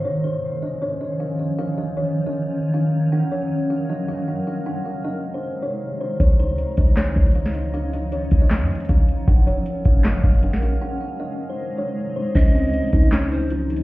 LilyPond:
<<
  \new Staff \with { instrumentName = "Kalimba" } { \time 4/4 \key des \major \tempo 4 = 156 des''8 c''8 r8 ees''8 des''8 ees''8 f''8 ees''8 | f''8 ees''8 des''8. ees''4~ ees''16 f''4 | ges''8 des''8 r8 f''8 ees''8 f''8 ges''8 f''8 | ges''8 f''8 ees''8. c''8. des''4 c''8 |
des''8 c''8 r8 ees''8 des''8 ees''8 f''8 ees''8 | f''8 ees''8 des''8. ees''4~ ees''16 f''4 | ges''8 des''8 r8 f''8 ees''8 f''8 ges''8 f''8 | ges''8 f''8 ees''8. c''8. des''4 c''8 |
des'8 c'8 r8 ees'8 des'8 ees'8 f'8 ees'8 | }
  \new Staff \with { instrumentName = "Pan flute" } { \time 4/4 \key des \major r1 | r1 | r1 | r1 |
r1 | r1 | r1 | r1 |
ees''2 des''8 c''8 r4 | }
  \new Staff \with { instrumentName = "Ambient pad" } { \clef bass \time 4/4 \key des \major << { des'1~ | des'1 | bes'1 | ees'1~ |
ees'1~ | ees'1 | bes'1 | ees'1 |
ees'1 | } \\ { <ees f>1~ | <ees f>1 | ges1 | <c aes>1 |
<f des'>1~ | <f des'>1 | <ges des'>1 | <c aes>1 |
<f des'>1 | } >> }
  \new Staff \with { instrumentName = "808-style bass" } { \clef bass \time 4/4 \key des \major r1 | r1 | r1 | r1 |
des,4 r8 des,4 des,4.~ | des,4. des,8. f,16 r8 des,8 r8 | ges,,8 f,,16 ges,,16 r8 ges,,4 ges,,8. bes,,8. | r1 |
des,4 r8 des,2~ des,8 | }
  \new DrumStaff \with { instrumentName = "Drums" } \drummode { \time 4/4 r4 r4 r4 r4 | r4 r4 r4 r4 | r4 r4 r4 r4 | r4 r4 r4 r4 |
<hh bd>8 hh8 hh8 <hh bd>8 <hc hh sn>8 <hh bd>32 hh32 hh32 hh32 hh16 sn16 hh8 | hh8 hh8 hh8 <hh bd>8 <hc hh sn>8 hh32 hh32 hh32 hh32 <hh bd>8 hh8 | <hh bd>8 hh8 hh8 <hh bd>8 <hc hh sn>8 <hh bd>32 hh32 hh32 hh32 hh16 sn16 hh8 | r4 r4 r4 r4 |
<cymc hh bd>8 hh8 hh8 <hh bd>8 <hc hh sn>8 hh8 \tuplet 3/2 { hh16 r16 r16 hh16 hh16 r16 } | }
>>